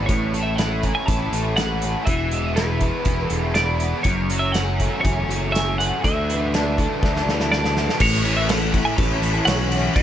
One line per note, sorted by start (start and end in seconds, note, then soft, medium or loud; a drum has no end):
0.00 1.59 E3 medium
0.00 0.58 E4 medium
0.06 0.91 A1 medium
0.06 1.33 A2 medium
0.06 0.46 C#5 medium
0.06 kick loud
0.06 closed hi-hat medium
0.33 1.33 A3 medium
0.33 closed hi-hat medium
0.43 0.56 E5 medium
0.56 1.07 E4 medium
0.56 0.94 F#5 medium
0.56 snare loud
0.56 closed hi-hat medium
0.83 1.82 C#4 medium
0.83 kick medium
0.83 closed hi-hat medium
0.95 1.06 G#5 medium
1.06 1.29 A1 medium
1.06 1.58 E4 medium
1.06 1.56 A5 medium
1.06 kick loud
1.06 closed hi-hat medium
1.32 1.94 A1 medium
1.32 2.08 A3 medium
1.32 closed hi-hat medium
1.57 2.08 E4 medium
1.57 2.05 F#5 medium
1.57 snare loud
1.57 closed hi-hat medium
1.82 2.08 C#4 medium
1.82 closed hi-hat medium
2.06 2.89 E1 medium
2.06 3.32 E3 medium
2.06 2.52 E5 medium
2.06 kick loud
2.06 closed hi-hat medium
2.31 3.31 G#3 medium
2.31 closed hi-hat soft
2.56 3.06 E4 medium
2.56 3.28 B4 medium
2.56 snare loud
2.56 closed hi-hat medium
2.81 3.81 B3 medium
2.81 kick medium
2.81 closed hi-hat medium
3.05 3.26 E1 medium
3.05 3.55 E4 medium
3.05 kick loud
3.05 closed hi-hat medium
3.28 3.92 E1 medium
3.28 4.06 G#3 medium
3.28 3.54 A4 medium
3.28 closed hi-hat medium
3.54 4.06 E4 medium
3.54 4.03 D5 medium
3.54 snare loud
3.54 closed hi-hat medium
3.80 4.06 B3 medium
3.80 closed hi-hat medium
4.03 4.87 F#1 medium
4.03 4.42 C#5 medium
4.03 kick loud
4.03 closed hi-hat medium
4.08 5.30 F#2 medium
4.30 5.27 F#3 medium
4.30 closed hi-hat medium
4.39 4.52 E5 medium
4.52 5.05 F#5 medium
4.52 snare loud
4.52 closed hi-hat medium
4.57 5.04 C#4 medium
4.80 5.79 A3 medium
4.80 kick medium
4.80 closed hi-hat medium
5.01 5.25 F#1 loud
5.01 5.54 C#5 medium
5.01 kick loud
5.01 closed hi-hat medium
5.05 5.52 C#4 medium
5.28 5.91 F#1 medium
5.28 6.03 F#3 medium
5.28 closed hi-hat medium
5.52 6.03 C#4 medium
5.52 5.78 E5 medium
5.52 closed hi-hat medium
5.56 snare medium
5.78 6.79 A3 medium
5.78 6.04 F#5 medium
5.78 closed hi-hat medium
6.04 6.86 D2 medium
6.04 7.27 D3 medium
6.04 7.48 E5 medium
6.04 kick medium
6.04 closed hi-hat medium
6.30 7.28 E3 medium
6.30 closed hi-hat medium
6.54 7.03 D4 medium
6.54 snare loud
6.54 closed hi-hat medium
6.78 7.74 A3 medium
6.78 kick medium
6.78 closed hi-hat soft
7.03 7.23 D2 medium
7.03 7.51 D4 medium
7.03 kick loud
7.03 snare medium
7.16 snare soft
7.26 7.88 D2 medium
7.26 8.02 E3 medium
7.26 snare medium
7.40 snare medium
7.52 8.01 D4 medium
7.52 8.01 D5 medium
7.52 snare medium
7.65 snare medium
7.75 8.00 A3 medium
7.75 snare medium
7.89 snare medium
8.00 8.82 A1 medium
8.00 9.23 A2 medium
8.00 8.39 C#5 loud
8.00 kick loud
8.00 crash loud
8.00 crash medium
8.25 9.20 E3 medium
8.25 crash medium
8.37 8.49 E5 medium
8.49 9.71 A3 medium
8.49 8.85 F#5 medium
8.49 snare loud
8.49 crash medium
8.72 9.95 E4 medium
8.72 kick medium
8.72 crash medium
8.85 8.97 G#5 medium
8.97 9.39 A1 loud
8.97 9.45 C#4 medium
8.97 9.45 A5 loud
8.97 kick loud
8.97 crash loud
9.21 9.69 E3 medium
9.21 crash medium
9.45 9.87 B1 medium
9.45 9.95 C#4 medium
9.45 9.96 F#5 loud
9.45 snare loud
9.45 crash medium
9.70 9.93 E3 medium
9.70 crash medium
9.94 10.03 E1 medium
9.94 10.03 E3 medium
9.94 10.03 E5 loud
9.94 kick loud
9.94 crash medium